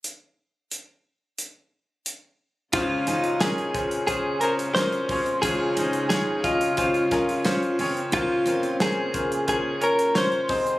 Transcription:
<<
  \new Staff \with { instrumentName = "Clean electric guitar" } { \time 4/4 \key des \major \tempo 4 = 89 r1 | f'4 aes'4 aes'8 bes'8 c''4 | aes'4 aes'8 f'8 f'4. r8 | f'4 aes'4 aes'8 bes'8 c''4 | }
  \new Staff \with { instrumentName = "Grand piano" } { \time 4/4 \key des \major r1 | <des' f' aes' c''>8 <des' f' aes' c''>8 <des' f' aes' bes'>8 <des' f' aes' c''>8 <des' f' aes' c''>8 <des' f' aes' c''>8 <des' f' aes' bes'>8 <des' f' aes' des''>8 | <des' f' aes' c''>8 <des' f' aes' c''>8 <des' f' aes' des''>8 <des' f' aes' ees''>8 <des' f' aes' c''>8 <des' f' aes' bes'>8 <des' f' aes' c''>8 <des' f' aes' des''>8 | <des' f' bes' c''>8 <des' f' bes' c''>8 <des' f' bes' c''>8 <des' f' bes' c''>8 <des' f' bes' c''>8 <des' f' bes' des''>8 <des' f' bes' des''>8 <c' ees' aes' c''>8 | }
  \new Staff \with { instrumentName = "Grand piano" } { \clef bass \time 4/4 \key des \major r1 | <des, des>1 | <des, des>1 | <bes,, bes,>2.~ <bes,, bes,>8 <c, c>8 | }
  \new Staff \with { instrumentName = "Steel-string acoustic guitar" } { \time 4/4 \key des \major r1 | f'8 ees'4 r2 r8 | f'8 ees'4 r4. des'16 r16 c'16 r16 | f'8 c'4 r2 r8 | }
  \new Staff \with { instrumentName = "String section" } { \clef bass \time 4/4 \key des \major << { r1 | <des f'>1~ | <des f'>1~ | <des f'>2.~ <des f'>8 <c, ees aes'>8 | } \\ { r1 | <aes c'>1~ | <aes c'>1 | bes2.~ bes8 aes8 | } >> }
  \new DrumStaff \with { instrumentName = "Drums" } \drummode { \time 4/4 hh4 hh4 hh4 hh4 | <hh bd>8 hh16 hh16 <hh sn>16 hh16 <hh bd>16 hh16 <hh bd>8 hh16 hh16 <hh sn>16 hh16 <hho bd>16 hh16 | <hh bd>8 hh16 hh16 <hh sn>8 <hh bd>16 hh16 <hh bd>16 hh16 <hh bd sn>16 hh16 <hh sn>16 hh16 hho16 hh16 | <hh bd>8 hh16 hh16 <hh sn>8 <hh bd>16 hh16 <hh bd>8 hh16 hh16 <hh sn>16 hh16 <hho bd>16 hh16 | }
>>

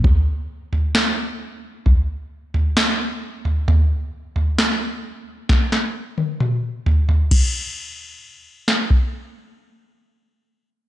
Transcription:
\new DrumStaff \with { instrumentName = "Drums" } \drummode { \time 4/4 \tempo 4 = 66 <bd tomfh>8. tomfh16 sn4 <bd tomfh>8. tomfh16 sn8. tomfh16 | tomfh8. tomfh16 sn4 <bd sn>16 sn8 tommh16 toml8 tomfh16 tomfh16 | <cymc bd>4 r8 sn16 bd16 r4 r4 | }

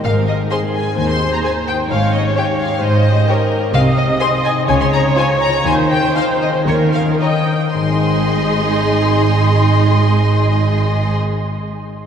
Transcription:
<<
  \new Staff \with { instrumentName = "Violin section" } { \time 4/4 \key aes \major \tempo 4 = 122 f''8 ees''8 c'''8 aes''8 aes''16 c'''8 bes''16 aes''8 g''8 | f''8 ees''8 g''8 f''8 ees''4. r8 | f''8 ees''8 c'''8 aes''8 aes''16 c'''16 bes''8 aes''8 bes''8 | aes''8 g''8 f''8 ees''8 des''8 f''8 g''4 |
c'''1~ | c'''1 | }
  \new Staff \with { instrumentName = "Viola section" } { \time 4/4 \key aes \major bes'4 aes'4 c''2 | des''2 c''4 bes'4 | ees''2 des''2 | c''2 bes'4 ees''8 r8 |
<aes ees'>1~ | <aes ees'>1 | }
  \new Staff \with { instrumentName = "Violin section" } { \time 4/4 \key aes \major r4 <aes' c''>4 r4 <aes' c''>4 | r4 <g' des''>4 r4 <g' des''>4 | r4 <aes' c''>4 r4 <f' c''>4 | r4 <ees' c''>4 r4 <ees' des''>4 |
<aes' ees''>1~ | <aes' ees''>1 | }
  \new Staff \with { instrumentName = "Harp" } { \time 4/4 \key aes \major << { \tuplet 3/2 { <aes, ees' ees''>8 c'8 aes'8 c''8 aes'8 ees'8 ees8 c'8 aes'8 c''8 aes'8 ees'8 } | \tuplet 3/2 { aes,8 des'8 g'8 des''8 g'8 ees'8 aes,8 des'8 g'8 des''8 g'8 ees'8 } | \tuplet 3/2 { c8 c'8 aes'8 c''8 aes'8 ees'8 des8 c'8 aes'8 c''8 aes'8 f'8 } | \tuplet 3/2 { ees8 ees'8 c''8 ees''8 c''8 aes'8 ees8 des'8 bes'8 des''8 bes'8 ees'8~ } |
ees'1~ | ees'1 | } \\ { r1 | r1 | r1 | r1 |
<aes, aes c' ees' c'' ees''>1~ | <aes, aes c' ees' c'' ees''>1 | } >> }
  \new Staff \with { instrumentName = "Cello section" } { \clef bass \time 4/4 \key aes \major aes,4 r4 ees,4 r4 | aes,4 r4 aes,4 r4 | c4 r4 des4 r4 | ees4 r4 ees4 r4 |
aes,1~ | aes,1 | }
  \new Staff \with { instrumentName = "Double bass section" } { \clef bass \time 4/4 \key aes \major aes,,4 r2. | aes,,4 r2. | c,4 r4 des,4 r4 | ees,4 r4 ees,4 r4 |
aes,,1~ | aes,,1 | }
>>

